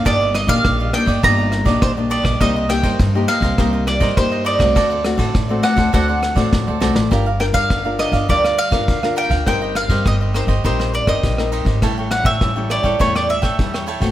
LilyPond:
<<
  \new Staff \with { instrumentName = "Mandolin" } { \time 4/4 \key g \minor \tempo 4 = 102 d''8 ees''16 f''8. g''8 bes''4 c''8 d''8 | ees''8 g''4 f''4 d''8 c''8 d''8~ | d''4. fis''8 fis''4. r8 | r8 g''16 f''8. ees''8 d''16 d''16 f''4 g''8 |
g''8 f''8 ees''8 c''8 c''8 d''16 ees''8. r8 | r8 fis''16 e''8. d''8 cis''16 d''16 e''4 r8 | }
  \new Staff \with { instrumentName = "Cavaquinho" } { \time 4/4 \key g \minor <d' g' d'' ees''>16 <g' d'' ees''>16 r16 <g' d'' ees''>8 <g' d'' ees''>16 <d' g' d'' ees''>16 <g' d'' ees''>16 <d' g' d'' ees''>16 <g' d'' ees''>16 r16 <g' d'' ees''>8 <g' d'' ees''>16 <d' g' d'' ees''>16 <g' d'' ees''>16 | <ees' bes' c'' ees''>16 <bes' c'' ees''>16 r16 <bes' c'' ees''>8 <bes' c'' ees''>16 <ees' bes' c'' ees''>16 <bes' c'' ees''>16 <ees' bes' c'' ees''>16 <bes' c'' ees''>16 r16 <bes' c'' ees''>8 <bes' c'' ees''>16 <ees' bes' c'' ees''>16 <bes' c'' ees''>16 | <fis' a' c'' d''>16 <a' c'' d''>16 r16 <a' c'' d''>8 <a' c'' d''>16 <fis' a' c'' d''>16 <a' c'' d''>16 <fis' a' c'' d''>16 <a' c'' d''>16 r16 <a' c'' d''>8 <a' c'' d''>16 <fis' a' c'' d''>16 <a' c'' d''>16 | <g' bes' d'' f''>16 <bes' d'' f''>16 r16 <bes' d'' f''>8 <bes' d'' f''>16 <g' bes' d'' f''>16 <bes' d'' f''>16 <g' bes' d'' f''>16 <bes' d'' f''>16 r16 <bes' d'' f''>8 <bes' d'' f''>16 <g' bes' d'' f''>16 <bes' d'' f''>16 |
<ees' g' c'' ees''>16 <g' c'' ees''>16 r16 <g' c'' ees''>8 <g' c'' ees''>16 <ees' g' c'' ees''>16 <g' c'' ees''>16 <ees' g' c'' ees''>16 <g' c'' ees''>16 r16 <g' c'' ees''>8 <g' c'' ees''>16 <ees' g' c'' ees''>16 <g' c'' ees''>16 | <e' a' cis'' g''>16 <a' cis'' g''>16 r16 <a' cis'' g''>8 <a' cis'' g''>16 <e' a' cis'' g''>16 <a' cis'' g''>16 <e' a' cis'' g''>16 <a' cis'' g''>16 r16 <a' cis'' g''>8 <a' cis'' g''>16 <e' a' cis'' g''>16 <a' cis'' g''>16 | }
  \new Staff \with { instrumentName = "Nylon-string guitar" } { \time 4/4 \key g \minor << { <ees bes d'>8 r16 <ees bes d'>8. <ees bes d'>8 <ees bes d'>8. <ees bes d'>8 <ees bes d'>8. | <bes ees' g'>8 <bes ees' g'>8 r16 <bes ees' g'>8. <bes ees' g'>4 <bes ees' g'>8. <a c' fis'>16~ | <a c' fis'>8 <a c' fis'>8 r16 <a c' fis'>8. <a c' fis'>8. <a c' fis'>8. <a c' fis'>16 r16 | <d' f' bes'>16 r16 <d' f' bes'>8. <d' f' bes'>8. <d' f' bes'>8 r16 <d' f' bes'>8 <d' f' bes'>8. |
<c' ees' bes'>8. <c' ees' bes'>8. <c' ees' bes'>16 r16 <c' ees' bes'>8. <c' ees' bes'>8 <c' ees' bes'>8. | <g cis' e'>8 <g cis' e'>16 r16 <g cis' e'>16 <g cis' e'>8 <g cis' e'>16 <g cis' e'>8. r16 <g cis' e'>8 r16 <a c' fis'>16 | } \\ { g,4 g,4 g,4 g,4 | c4 g,4 c4 g,4 | d4 a,4 d4 a,4 | g4 d4 g4 d4 |
g4 g4 g4 g4 | a,4 e4 a,4 e4 | } >> }
  \new Staff \with { instrumentName = "Upright bass" } { \clef bass \time 4/4 \key g \minor g,,8. bes,,16 bes,,8 r16 g,,16 g,,8. bes,,16 bes,,8. bes,,16 | c,8. g,16 g,8 r16 c,16 c,8. g,16 g,8. c,16 | d,8. a,,16 a,,8 r16 d,16 d,8. a,,16 a,,16 d,16 c,16 a,,16 | g,,8. g,16 g,,8. g,,16 d,8. g,,16 d,8. d,16 |
g,,8. g,16 g,,8. g,,16 bes,,8. g,,16 bes,,8. aes,,16 | a,,8. a,16 a,,8. a,,16 e,8. a,,16 e,8. a,,16 | }
  \new DrumStaff \with { instrumentName = "Drums" } \drummode { \time 4/4 <bd cymr ss>8 <cymr ss>16 <bd cymr>16 <bd cymr ss>8 <cymr ss>16 <bd cymr>16 <bd cymr ss>8 <cymr ss>16 <bd cymr>16 <bd cymr ss>8 cymr16 <bd cymr ss>16 | <bd cymr ss>8 <cymr ss>16 <bd cymr>16 <bd cymr ss>8 <cymr ss>16 <bd cymr>16 <bd cymr ss>8 <cymr ss>16 <bd cymr>16 <bd cymr ss>8 cymr16 <bd cymr ss>16 | <bd cymr ss>8 <cymr ss>16 <bd cymr>16 <bd cymr ss>8 <cymr ss>16 <bd cymr>16 <bd cymr ss>8 <cymr ss>16 <bd cymr>16 <bd sn>8 sn16 sn16 | <bd cymr ss>8 <cymr ss>16 <bd cymr>16 <bd cymr ss>8 <cymr ss>16 <bd cymr>16 <bd cymr>16 ss16 cymr16 <bd cymr ss>16 <bd cymr>16 ss16 cymr16 <bd cymr>16 |
<bd cymr ss>8 <cymr ss>16 <bd cymr>16 <bd cymr ss>8 <cymr ss>16 <bd cymr>16 <bd cymr>16 ss16 cymr16 <bd cymr ss>16 <bd cymr>16 ss16 cymr16 <bd cymr>16 | <bd cymr ss>8 <cymr ss>16 <bd cymr>16 <bd cymr ss>8 <cymr ss>16 <bd cymr>16 <bd cymr>16 ss16 cymr16 <bd cymr ss>16 <bd cymr>16 ss16 cymr16 <bd cymr>16 | }
>>